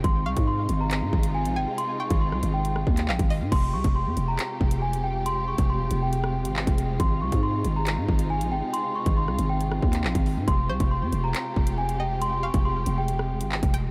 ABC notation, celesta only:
X:1
M:4/4
L:1/16
Q:1/4=138
K:Fm
V:1 name="Celesta"
c'2 d'2 c'3 b4- b a2 g2 | c'2 d'2 c'3 g8- g | c'2 d'2 c'3 b4- b a2 g2 | c'2 d'2 c'3 g8- g |
c'2 d'2 c'3 b4- b a2 g2 | c'2 d'2 c'3 g8- g | c'2 d'2 c'3 b4- b a2 g2 | c'2 d'2 c'3 g8- g |]